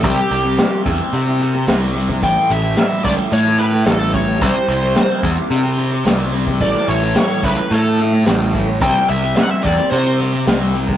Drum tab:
HH |x-x-x-x-x-x-x-x-|x-x-x-x-x-x-x-x-|x-x-x-x-x-x-x-x-|x-x-x-x-x-x-x-x-|
SD |----o-------o---|----o-------o---|----o-------o---|-o--o-------o---|
BD |o-----o--------o|o-----o-------o-|o-----o--------o|o-----o-------o-|

HH |x-x-x-x-x-x-x-x-|
SD |-o--o-------o---|
BD |o-----o--------o|